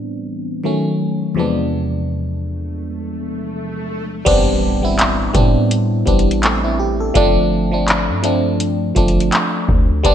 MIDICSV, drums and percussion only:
0, 0, Header, 1, 2, 480
1, 0, Start_track
1, 0, Key_signature, 0, "minor"
1, 0, Tempo, 722892
1, 911, Time_signature, 4, 2, 24, 8
1, 6737, End_track
2, 0, Start_track
2, 0, Title_t, "Drums"
2, 2831, Note_on_c, 9, 36, 104
2, 2831, Note_on_c, 9, 42, 67
2, 2831, Note_on_c, 9, 49, 83
2, 2897, Note_off_c, 9, 49, 0
2, 2898, Note_off_c, 9, 36, 0
2, 2898, Note_off_c, 9, 42, 0
2, 3313, Note_on_c, 9, 42, 72
2, 3316, Note_on_c, 9, 39, 108
2, 3379, Note_off_c, 9, 42, 0
2, 3383, Note_off_c, 9, 39, 0
2, 3549, Note_on_c, 9, 36, 93
2, 3549, Note_on_c, 9, 42, 63
2, 3616, Note_off_c, 9, 36, 0
2, 3616, Note_off_c, 9, 42, 0
2, 3792, Note_on_c, 9, 42, 82
2, 3858, Note_off_c, 9, 42, 0
2, 4031, Note_on_c, 9, 42, 47
2, 4032, Note_on_c, 9, 36, 86
2, 4097, Note_off_c, 9, 42, 0
2, 4098, Note_off_c, 9, 36, 0
2, 4111, Note_on_c, 9, 42, 45
2, 4177, Note_off_c, 9, 42, 0
2, 4190, Note_on_c, 9, 42, 46
2, 4257, Note_off_c, 9, 42, 0
2, 4270, Note_on_c, 9, 42, 66
2, 4274, Note_on_c, 9, 39, 106
2, 4336, Note_off_c, 9, 42, 0
2, 4341, Note_off_c, 9, 39, 0
2, 4750, Note_on_c, 9, 36, 107
2, 4750, Note_on_c, 9, 42, 69
2, 4816, Note_off_c, 9, 42, 0
2, 4817, Note_off_c, 9, 36, 0
2, 5231, Note_on_c, 9, 42, 68
2, 5235, Note_on_c, 9, 39, 110
2, 5298, Note_off_c, 9, 42, 0
2, 5301, Note_off_c, 9, 39, 0
2, 5469, Note_on_c, 9, 42, 66
2, 5535, Note_off_c, 9, 42, 0
2, 5711, Note_on_c, 9, 42, 78
2, 5777, Note_off_c, 9, 42, 0
2, 5950, Note_on_c, 9, 42, 45
2, 5952, Note_on_c, 9, 36, 88
2, 6016, Note_off_c, 9, 42, 0
2, 6018, Note_off_c, 9, 36, 0
2, 6031, Note_on_c, 9, 42, 43
2, 6097, Note_off_c, 9, 42, 0
2, 6111, Note_on_c, 9, 42, 46
2, 6178, Note_off_c, 9, 42, 0
2, 6191, Note_on_c, 9, 42, 66
2, 6195, Note_on_c, 9, 39, 103
2, 6257, Note_off_c, 9, 42, 0
2, 6262, Note_off_c, 9, 39, 0
2, 6431, Note_on_c, 9, 36, 98
2, 6497, Note_off_c, 9, 36, 0
2, 6671, Note_on_c, 9, 36, 112
2, 6671, Note_on_c, 9, 42, 70
2, 6737, Note_off_c, 9, 36, 0
2, 6737, Note_off_c, 9, 42, 0
2, 6737, End_track
0, 0, End_of_file